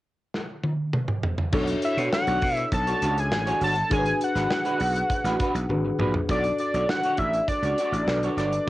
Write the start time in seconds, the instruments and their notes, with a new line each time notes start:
0.35 snare
0.64 high tom
0.93 mid tom
1.08 mid tom
1.23 floor tom
1.38 floor tom
1.52 slap bass B1, clean electric guitar A3 D4 F#4 C#5, tine electric piano D4 F#4 A4 C#5, kick, crash
1.67 muted clean electric guitar stroke, closed hi-hat
1.82 analog synth lead E5, muted clean electric guitar stroke, closed hi-hat
1.97 slap bass B2, clean electric guitar A3 D4 F#4 C#5, closed hi-hat
2.12 analog synth lead F#5, muted clean electric guitar stroke, snare
2.27 slap bass B1, clean electric guitar A3 D4 F#4 C#5, closed hi-hat
2.41 slap bass B2, muted clean electric guitar stroke, kick, open hi-hat
2.56 analog synth lead E5, muted clean electric guitar stroke, closed hi-hat
2.72 slap bass B1, analog synth lead A5, muted clean electric guitar stroke, kick, closed hi-hat
2.87 clean electric guitar A3 D4 F#4 C#5, closed hi-hat
3.02 slap bass C#2, clean electric guitar A3 D4 F#4 C#5, closed hi-hat
3.17 analog synth lead G#5, muted clean electric guitar stroke, closed hi-hat
3.31 slap bass A1, muted clean electric guitar stroke, snare
3.46 clean electric guitar A3 D4 F#4 C#5, closed hi-hat
3.61 slap bass G1, clean electric guitar A3 D4 F#4 C#5, analog synth lead A5, open hi-hat
3.75 muted clean electric guitar stroke, closed hi-hat
3.90 slap bass G#1, clean electric guitar G#3 D4 F#4 C#5, tine electric piano D4 F#4 G#4 A#4, analog synth lead G#5, kick, closed hi-hat
3.99 tine electric piano B4
4.05 muted clean electric guitar stroke, closed hi-hat
4.20 analog synth lead F#5, muted clean electric guitar stroke, closed hi-hat
4.35 slap bass G#1, clean electric guitar G#3 D4 F#4 B4, snare, closed hi-hat
4.50 muted clean electric guitar stroke, snare
4.65 clean electric guitar G#3 D4 F#4 B4, closed hi-hat
4.80 slap bass B1, muted clean electric guitar stroke, open hi-hat
4.96 muted clean electric guitar stroke, closed hi-hat
5.10 muted clean electric guitar stroke, kick, closed hi-hat
5.24 slap bass A1, clean electric guitar G#3 D4 F#4 B4, snare, closed hi-hat
5.40 clean electric guitar G#3 D4 F#4 B4, kick, closed hi-hat
5.55 slap bass B1, muted clean electric guitar stroke, closed hi-hat
5.69 slap bass G#1, tine electric piano D4 F#4 G#4 B4, muted clean electric guitar stroke, high tom
5.85 muted clean electric guitar stroke
5.99 slap bass A#1, clean electric guitar G#3 D4 F#4 B4, mid tom
6.14 muted clean electric guitar stroke, floor tom
6.28 slap bass B1, clean electric guitar A3 D4 F#4 C#5, tine electric piano D4 F#4 A4 D5, analog synth lead D5, kick, closed hi-hat
6.44 muted clean electric guitar stroke, closed hi-hat
6.59 analog synth lead D5, muted clean electric guitar stroke, closed hi-hat
6.74 slap bass B1, clean electric guitar A3 D4 F#4 C#5, closed hi-hat
6.89 analog synth lead F#5, muted clean electric guitar stroke, snare
7.03 clean electric guitar A3 D4 F#4 C#5, closed hi-hat
7.17 slap bass A1, analog synth lead E5, muted clean electric guitar stroke, kick, closed hi-hat
7.33 muted clean electric guitar stroke, closed hi-hat
7.48 analog synth lead D5, muted clean electric guitar stroke, kick, closed hi-hat
7.62 slap bass C#2, clean electric guitar A3 D4 F#4 C#5, closed hi-hat
7.78 clean electric guitar A3 D4 F#4 C#5, closed hi-hat
7.92 slap bass A1, muted clean electric guitar stroke, closed hi-hat
8.07 slap bass B1, tine electric piano D4 F#4 A4 B4, muted clean electric guitar stroke, snare
8.23 clean electric guitar A3 D4 F#4 C#5, closed hi-hat
8.37 slap bass G1, clean electric guitar A3 D4 F#4 C#5, analog synth lead D5, snare, closed hi-hat
8.53 closed hi-hat